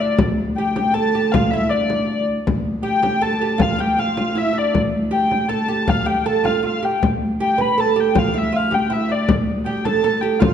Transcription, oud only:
0, 0, Header, 1, 2, 480
1, 0, Start_track
1, 0, Key_signature, -1, "minor"
1, 0, Tempo, 379267
1, 230, Time_signature, 3, 2, 24, 8
1, 13336, End_track
2, 0, Start_track
2, 0, Title_t, "Oud"
2, 0, Program_c, 0, 24
2, 11, Note_on_c, 0, 62, 60
2, 225, Note_off_c, 0, 62, 0
2, 737, Note_on_c, 0, 67, 72
2, 948, Note_off_c, 0, 67, 0
2, 963, Note_on_c, 0, 67, 72
2, 1183, Note_off_c, 0, 67, 0
2, 1188, Note_on_c, 0, 69, 87
2, 1413, Note_off_c, 0, 69, 0
2, 1453, Note_on_c, 0, 67, 72
2, 1690, Note_off_c, 0, 67, 0
2, 1700, Note_on_c, 0, 65, 80
2, 1911, Note_off_c, 0, 65, 0
2, 1942, Note_on_c, 0, 64, 67
2, 2155, Note_off_c, 0, 64, 0
2, 2160, Note_on_c, 0, 62, 63
2, 2827, Note_off_c, 0, 62, 0
2, 3581, Note_on_c, 0, 67, 79
2, 3813, Note_off_c, 0, 67, 0
2, 3828, Note_on_c, 0, 67, 76
2, 4063, Note_off_c, 0, 67, 0
2, 4068, Note_on_c, 0, 69, 85
2, 4295, Note_off_c, 0, 69, 0
2, 4322, Note_on_c, 0, 67, 74
2, 4527, Note_off_c, 0, 67, 0
2, 4532, Note_on_c, 0, 65, 79
2, 4787, Note_off_c, 0, 65, 0
2, 4792, Note_on_c, 0, 67, 76
2, 5039, Note_off_c, 0, 67, 0
2, 5044, Note_on_c, 0, 65, 72
2, 5263, Note_off_c, 0, 65, 0
2, 5279, Note_on_c, 0, 65, 70
2, 5508, Note_on_c, 0, 64, 71
2, 5525, Note_off_c, 0, 65, 0
2, 5728, Note_off_c, 0, 64, 0
2, 5733, Note_on_c, 0, 62, 57
2, 5967, Note_off_c, 0, 62, 0
2, 6466, Note_on_c, 0, 67, 77
2, 6945, Note_off_c, 0, 67, 0
2, 6950, Note_on_c, 0, 69, 86
2, 7186, Note_off_c, 0, 69, 0
2, 7191, Note_on_c, 0, 67, 74
2, 7431, Note_off_c, 0, 67, 0
2, 7437, Note_on_c, 0, 65, 79
2, 7663, Note_off_c, 0, 65, 0
2, 7668, Note_on_c, 0, 67, 74
2, 7915, Note_off_c, 0, 67, 0
2, 7920, Note_on_c, 0, 69, 81
2, 8140, Note_off_c, 0, 69, 0
2, 8145, Note_on_c, 0, 65, 63
2, 8373, Note_off_c, 0, 65, 0
2, 8388, Note_on_c, 0, 65, 66
2, 8633, Note_off_c, 0, 65, 0
2, 8638, Note_on_c, 0, 67, 61
2, 8859, Note_off_c, 0, 67, 0
2, 9371, Note_on_c, 0, 67, 75
2, 9589, Note_off_c, 0, 67, 0
2, 9594, Note_on_c, 0, 71, 73
2, 9839, Note_off_c, 0, 71, 0
2, 9844, Note_on_c, 0, 69, 84
2, 10062, Note_off_c, 0, 69, 0
2, 10074, Note_on_c, 0, 67, 81
2, 10308, Note_off_c, 0, 67, 0
2, 10313, Note_on_c, 0, 65, 81
2, 10547, Note_off_c, 0, 65, 0
2, 10552, Note_on_c, 0, 64, 77
2, 10783, Note_off_c, 0, 64, 0
2, 10788, Note_on_c, 0, 65, 72
2, 11017, Note_off_c, 0, 65, 0
2, 11022, Note_on_c, 0, 67, 68
2, 11257, Note_off_c, 0, 67, 0
2, 11262, Note_on_c, 0, 64, 77
2, 11504, Note_on_c, 0, 62, 57
2, 11514, Note_off_c, 0, 64, 0
2, 11730, Note_off_c, 0, 62, 0
2, 12225, Note_on_c, 0, 67, 82
2, 12471, Note_off_c, 0, 67, 0
2, 12476, Note_on_c, 0, 69, 76
2, 12692, Note_off_c, 0, 69, 0
2, 12707, Note_on_c, 0, 69, 85
2, 12936, Note_off_c, 0, 69, 0
2, 12941, Note_on_c, 0, 67, 72
2, 13161, Note_off_c, 0, 67, 0
2, 13166, Note_on_c, 0, 65, 79
2, 13336, Note_off_c, 0, 65, 0
2, 13336, End_track
0, 0, End_of_file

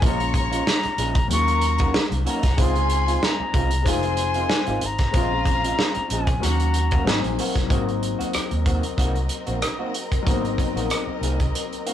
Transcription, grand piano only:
0, 0, Header, 1, 2, 480
1, 0, Start_track
1, 0, Tempo, 639659
1, 23, Time_signature, 4, 2, 24, 8
1, 8956, End_track
2, 0, Start_track
2, 0, Title_t, "Grand piano"
2, 0, Program_c, 0, 0
2, 0, Control_c, 0, 64, 127
2, 0, Note_on_c, 0, 56, 64
2, 6, Note_on_c, 0, 58, 59
2, 24, Note_on_c, 0, 61, 62
2, 31, Control_c, 0, 64, 0
2, 37, Note_on_c, 0, 65, 74
2, 170, Control_c, 0, 64, 127
2, 947, Note_off_c, 0, 56, 0
2, 954, Note_off_c, 0, 58, 0
2, 959, Note_on_c, 0, 54, 62
2, 963, Note_off_c, 0, 61, 0
2, 970, Note_off_c, 0, 65, 0
2, 974, Note_on_c, 0, 58, 60
2, 990, Note_on_c, 0, 61, 60
2, 991, Control_c, 0, 64, 0
2, 1004, Note_on_c, 0, 65, 72
2, 1132, Control_c, 0, 64, 127
2, 1910, Note_off_c, 0, 54, 0
2, 1917, Note_off_c, 0, 58, 0
2, 1925, Note_on_c, 0, 56, 70
2, 1926, Note_off_c, 0, 61, 0
2, 1933, Note_off_c, 0, 65, 0
2, 1937, Note_on_c, 0, 60, 58
2, 1951, Control_c, 0, 64, 0
2, 1954, Note_on_c, 0, 63, 57
2, 1970, Note_on_c, 0, 65, 75
2, 2085, Control_c, 0, 64, 127
2, 2857, Note_off_c, 0, 56, 0
2, 2868, Note_on_c, 0, 56, 65
2, 2873, Note_off_c, 0, 60, 0
2, 2884, Note_on_c, 0, 60, 61
2, 2888, Note_off_c, 0, 63, 0
2, 2895, Note_off_c, 0, 65, 0
2, 2902, Note_on_c, 0, 63, 60
2, 2910, Control_c, 0, 64, 0
2, 2916, Note_on_c, 0, 65, 72
2, 3034, Control_c, 0, 64, 127
2, 3824, Note_off_c, 0, 56, 0
2, 3832, Note_off_c, 0, 60, 0
2, 3836, Note_on_c, 0, 56, 67
2, 3841, Note_off_c, 0, 63, 0
2, 3847, Note_on_c, 0, 60, 63
2, 3848, Note_off_c, 0, 65, 0
2, 3862, Note_on_c, 0, 61, 59
2, 3868, Control_c, 0, 64, 0
2, 3879, Note_on_c, 0, 65, 76
2, 3992, Control_c, 0, 64, 127
2, 4788, Note_off_c, 0, 56, 0
2, 4794, Note_off_c, 0, 60, 0
2, 4801, Note_off_c, 0, 61, 0
2, 4802, Note_on_c, 0, 54, 66
2, 4809, Note_on_c, 0, 58, 61
2, 4810, Note_off_c, 0, 65, 0
2, 4815, Note_on_c, 0, 61, 62
2, 4822, Note_on_c, 0, 66, 71
2, 4829, Control_c, 0, 64, 0
2, 4969, Control_c, 0, 64, 127
2, 5274, Note_off_c, 0, 54, 0
2, 5280, Note_off_c, 0, 58, 0
2, 5285, Note_on_c, 0, 54, 60
2, 5291, Note_on_c, 0, 58, 58
2, 5294, Note_on_c, 0, 60, 57
2, 5297, Note_off_c, 0, 61, 0
2, 5301, Note_off_c, 0, 66, 0
2, 5303, Note_on_c, 0, 63, 68
2, 5309, Control_c, 0, 64, 0
2, 5452, Control_c, 0, 64, 127
2, 5740, Note_off_c, 0, 54, 0
2, 5752, Note_on_c, 0, 54, 73
2, 5757, Note_off_c, 0, 58, 0
2, 5768, Note_on_c, 0, 58, 64
2, 5770, Note_off_c, 0, 60, 0
2, 5781, Note_off_c, 0, 63, 0
2, 5782, Note_on_c, 0, 60, 64
2, 5787, Control_c, 0, 64, 0
2, 5793, Note_on_c, 0, 63, 77
2, 5935, Control_c, 0, 64, 127
2, 7658, Note_off_c, 0, 54, 0
2, 7666, Note_off_c, 0, 58, 0
2, 7673, Note_off_c, 0, 60, 0
2, 7673, Note_on_c, 0, 54, 73
2, 7679, Note_off_c, 0, 63, 0
2, 7689, Note_on_c, 0, 58, 66
2, 7707, Note_on_c, 0, 59, 52
2, 7724, Note_on_c, 0, 63, 79
2, 7756, Note_on_c, 0, 60, 70
2, 7757, Note_off_c, 0, 59, 0
2, 8903, Note_on_c, 0, 77, 64
2, 8956, Note_off_c, 0, 54, 0
2, 8956, Note_off_c, 0, 58, 0
2, 8956, Note_off_c, 0, 60, 0
2, 8956, Note_off_c, 0, 63, 0
2, 8956, Note_off_c, 0, 77, 0
2, 8956, End_track
0, 0, End_of_file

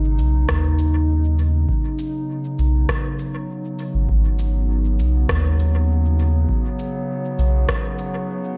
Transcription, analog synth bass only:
0, 0, Header, 1, 2, 480
1, 0, Start_track
1, 0, Key_signature, 5, "minor"
1, 0, Tempo, 600000
1, 1348, Time_signature, 4, 2, 24, 8
1, 6859, End_track
2, 0, Start_track
2, 0, Title_t, "Analog synth bass"
2, 0, Program_c, 0, 38
2, 0, Note_on_c, 0, 32, 93
2, 152, Note_on_c, 0, 35, 103
2, 164, Note_off_c, 0, 32, 0
2, 362, Note_off_c, 0, 35, 0
2, 390, Note_on_c, 0, 39, 92
2, 1326, Note_off_c, 0, 39, 0
2, 2072, Note_on_c, 0, 35, 100
2, 2282, Note_off_c, 0, 35, 0
2, 3156, Note_on_c, 0, 32, 94
2, 3256, Note_off_c, 0, 32, 0
2, 3272, Note_on_c, 0, 32, 94
2, 3993, Note_on_c, 0, 35, 102
2, 4005, Note_off_c, 0, 32, 0
2, 4202, Note_off_c, 0, 35, 0
2, 4235, Note_on_c, 0, 39, 91
2, 5169, Note_off_c, 0, 39, 0
2, 5911, Note_on_c, 0, 35, 105
2, 6121, Note_off_c, 0, 35, 0
2, 6859, End_track
0, 0, End_of_file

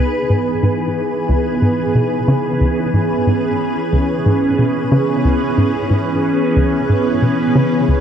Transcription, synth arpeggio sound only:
0, 0, Header, 1, 2, 480
1, 0, Start_track
1, 0, Key_signature, 4, "minor"
1, 0, Tempo, 659341
1, 1900, Time_signature, 4, 2, 24, 8
1, 5828, End_track
2, 0, Start_track
2, 0, Title_t, "Synth arpeggio sound"
2, 0, Program_c, 0, 84
2, 219, Note_on_c, 0, 44, 72
2, 444, Note_off_c, 0, 44, 0
2, 459, Note_on_c, 0, 44, 75
2, 609, Note_off_c, 0, 44, 0
2, 940, Note_on_c, 0, 37, 81
2, 1165, Note_off_c, 0, 37, 0
2, 1180, Note_on_c, 0, 44, 73
2, 1330, Note_off_c, 0, 44, 0
2, 1421, Note_on_c, 0, 47, 73
2, 1510, Note_off_c, 0, 47, 0
2, 1660, Note_on_c, 0, 49, 100
2, 1810, Note_off_c, 0, 49, 0
2, 1900, Note_on_c, 0, 37, 80
2, 1990, Note_off_c, 0, 37, 0
2, 2140, Note_on_c, 0, 44, 71
2, 2364, Note_off_c, 0, 44, 0
2, 2380, Note_on_c, 0, 44, 73
2, 2530, Note_off_c, 0, 44, 0
2, 2860, Note_on_c, 0, 37, 81
2, 3084, Note_off_c, 0, 37, 0
2, 3101, Note_on_c, 0, 44, 75
2, 3250, Note_off_c, 0, 44, 0
2, 3340, Note_on_c, 0, 47, 73
2, 3430, Note_off_c, 0, 47, 0
2, 3580, Note_on_c, 0, 49, 100
2, 3730, Note_off_c, 0, 49, 0
2, 3820, Note_on_c, 0, 37, 80
2, 3910, Note_off_c, 0, 37, 0
2, 4060, Note_on_c, 0, 44, 74
2, 4284, Note_off_c, 0, 44, 0
2, 4298, Note_on_c, 0, 44, 75
2, 4449, Note_off_c, 0, 44, 0
2, 4779, Note_on_c, 0, 37, 81
2, 5004, Note_off_c, 0, 37, 0
2, 5020, Note_on_c, 0, 44, 73
2, 5170, Note_off_c, 0, 44, 0
2, 5258, Note_on_c, 0, 47, 75
2, 5349, Note_off_c, 0, 47, 0
2, 5500, Note_on_c, 0, 49, 98
2, 5649, Note_off_c, 0, 49, 0
2, 5740, Note_on_c, 0, 37, 81
2, 5828, Note_off_c, 0, 37, 0
2, 5828, End_track
0, 0, End_of_file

